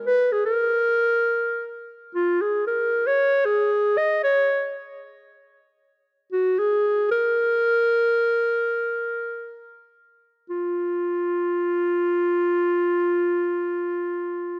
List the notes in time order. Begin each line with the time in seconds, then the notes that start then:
0.06 B4
0.32 G#4
0.46 A#4
2.15 F4
2.41 G#4
2.67 A#4
3.07 C#5
3.45 G#4
3.98 D#5
4.24 C#5
6.33 F#4
6.59 G#4
7.11 A#4
10.50 F4